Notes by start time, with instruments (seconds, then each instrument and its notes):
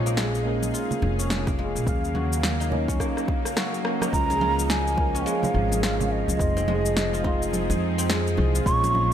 Already playing: upright bass A#1, synth drone C#3 G#3 D#4 G#4, tine electric piano G#3 A#3 C#4 F4, guzheng C#4 D#4 F4, singing bowl F4
0.06 guzheng A#3, synth drone F5, cabasa
0.17 guzheng G#3, snare, cabasa
0.35 cabasa
0.43 tine electric piano G#3 A#3 C#4
0.47 tine electric piano A#4
0.58 synth drone A#3
0.62 muted conga, high conga, cabasa
0.74 guzheng F4, cabasa
0.90 high conga, low conga, cabasa
1.02 upright bass F1, muted conga, high conga
1.19 guzheng C#4, cabasa
1.30 snare, cabasa
1.47 guzheng A#3, kick, muted conga, high conga, low conga, cabasa
1.59 guzheng G#3, muted conga
1.75 upright bass A#1, cabasa
1.85 upright bass D#2, tine electric piano F#3 A#3 C#4, kick, cabasa
1.89 tine electric piano F5
2.04 cabasa
2.15 synth drone F#3, guzheng F#4, high conga, low conga
2.32 synth drone A#4, cabasa
2.43 snare, cabasa
2.60 guzheng D#4, cabasa
2.69 tine electric piano F#3 A#3 C#4, low conga
2.73 tine electric piano D#4
2.87 guzheng C#4, synth drone D#4, kick, muted conga, high conga, cabasa
3.00 guzheng A#3, kick, cross-stick, cabasa
3.17 cross-stick, cabasa
3.28 kick, muted conga, high conga
3.45 cross-stick, cabasa
3.57 guzheng F#4, cross-stick, snare, cabasa
3.74 cabasa
3.84 tine electric piano F#3 A#3 C#4 F#4, cross-stick
4.01 guzheng D#4, cross-stick, high conga, cabasa
4.11 upright bass C#2, tine electric piano F3 G#3 C#4 F4, synth drone F3, bansuri A#5, kick, cabasa
4.26 synth drone C#4
4.30 guzheng G#4, muted conga, cabasa
4.37 synth drone G#3, guzheng F4, high conga
4.59 cabasa
4.69 bansuri G#5, snare, cabasa
4.87 cabasa
4.96 tine electric piano F3 G#3 C#4, kick, muted conga
5.00 synth drone G#4, tine electric piano A#4
5.15 guzheng C#4, synth drone C#5, cabasa
5.26 guzheng G#3, bansuri F5, cabasa
5.43 high conga, low conga, cabasa
5.54 upright bass G#1
5.72 guzheng G#4, high conga, cabasa
5.83 guzheng F4, bansuri F5, snare, cabasa
6.00 low conga, cabasa
6.12 bansuri D#5
6.28 upright bass C#2, high conga, cabasa
6.38 upright bass F1, tine electric piano G#3 C4 D#4, kick, cabasa
6.42 tine electric piano F4
6.54 synth drone C4, guzheng C4, muted conga, cabasa
6.63 synth drone D#4
6.68 guzheng G#3, high conga, low conga
6.86 cabasa
6.97 snare, cabasa
7.13 guzheng F4, cabasa
7.23 tine electric piano G#3 C4 D#4 F4, guzheng D#4, kick, muted conga, low conga
7.30 synth drone C5
7.42 cabasa
7.53 high conga, cabasa
7.70 upright bass F2, muted conga, cabasa
7.98 guzheng C4, cabasa
8.09 guzheng G#3, snare, cabasa
8.27 cabasa
8.37 upright bass C2, high conga
8.55 guzheng F4, cabasa
8.64 upright bass A#1, tine electric piano G#3 A#3 C#4 F4, guzheng C#4, bansuri C#6, kick, cabasa
8.84 synth drone C#4, muted conga, cabasa
8.95 high conga